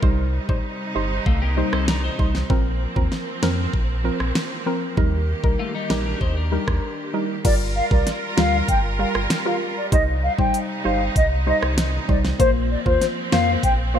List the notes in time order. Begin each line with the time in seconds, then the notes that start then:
Already playing: G3
0.02 C2 C3 G3 D#4 C5, kick
0.49 A1 G3 D#4 C5, kick
0.95 G1 G3 D#4 C5
1.26 C2 A3 F4, kick
1.42 A#3 G4
1.57 G3 D#4 C5
1.73 C2 C4 A4, cross-stick
1.88 D4 A#4, snare
2.04 D#4 C5
2.19 C2 G3 D#4 C5, kick
2.35 snare
2.50 A#1 F3 A#3 C4 A#4, kick
2.96 D#2 F3 C4 A#4, kick
3.12 snare
3.42 F2 F3 C4 A#4, snare
3.74 A#1, kick
4.04 F3 C4 A#4
4.20 A#1, cross-stick
4.35 snare
4.66 F3 C4 A#4
4.97 D#2 D#3 G3 D#4 G4 A#4, kick
5.43 C2 G3 D#4 A#4, kick
5.59 A3 F4
5.75 G3 D#4
5.90 A#1 G3 A#3 D#4 G4 A#4, snare
6.06 D4 A#4
6.21 D#2 D#4 C5, kick
6.37 D4 A#4
6.52 G3 D#4 A#4
6.68 D#2, kick, cross-stick
7.13 G3 D#4 A#4
7.44 G1 G3 F4 A#4 D5, kick, closed hi-hat, crash
7.76 F5
7.91 C2 G3 F4 A#4 D5, kick
8.07 snare, closed hi-hat
8.37 D2 G3 F4 A#4 F5, snare
8.68 G1 G5, kick, closed hi-hat
8.99 G3 F4 A#4 F5
9.15 G1, cross-stick
9.30 snare, closed hi-hat
9.45 G3 F4 A#4 F5
9.77 D5
9.92 C2 C3 G3 D#4 C5 D#5, kick, closed hi-hat
10.23 F5
10.38 A1 G3 D#4 C5 G5, kick
10.54 closed hi-hat
10.85 G1 G3 D#4 C5 F5
11.16 C2 D#5, kick, closed hi-hat
11.46 G3 D#4 C5 D#5
11.62 C2, cross-stick
11.78 snare, closed hi-hat
12.08 C2 G3 D#4 C5 D5, kick
12.25 snare
12.39 A#1 F3 A#3 C4 F4 C5, kick, closed hi-hat
12.71 D5
12.86 D#2 A#3 F4 C5, kick
13.01 snare, closed hi-hat
13.32 F2 A#3 F4 C5 F5, snare
13.63 A#1 G5, kick, closed hi-hat
13.94 A#3 F4 C5 F5